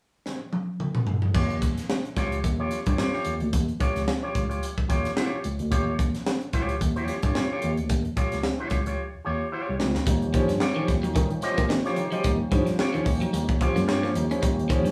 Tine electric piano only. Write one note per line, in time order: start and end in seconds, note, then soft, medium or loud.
1.35 1.72 D#2 loud
2.17 2.40 C#2 medium
2.44 2.68 D#2 medium
2.87 2.97 G2 medium
3.26 3.39 D#2 medium
3.42 3.52 D2 medium
3.53 3.67 D#2 medium
3.96 4.06 C#2 medium
4.35 4.59 C#2 medium
4.78 4.83 D#2 soft
4.90 5.03 D#2 medium
5.45 5.58 C#2 medium
5.60 5.70 D2 medium
5.72 6.09 D#2 medium
6.53 6.77 C#2 medium
6.81 7.05 D#2 medium
7.23 7.34 G2 medium
7.64 7.76 D#2 loud
7.79 7.89 D2 medium
7.90 8.03 D#2 medium
8.34 8.43 C#2 medium
8.71 8.95 C#2 medium
9.15 9.20 D#2 soft
9.27 9.39 D#2 medium
9.69 9.79 C2 medium
9.81 9.94 C#2 loud
9.96 10.06 D2 medium
10.07 10.44 D#2 loud
10.50 10.60 G2 medium
10.89 11.12 D#2 medium
11.16 11.29 D#3 loud
11.43 11.49 D#3 medium
11.58 11.69 D#3 medium
12.24 12.38 D#2 loud
12.52 12.65 G2 medium
12.94 12.99 D#2 soft
13.06 13.20 D#2 medium
13.33 13.57 D#2 medium
13.76 13.87 F#2 medium
13.87 14.11 G2 medium
14.16 14.29 D#2 loud
14.43 14.80 D#2 loud
14.85 14.91 G2 medium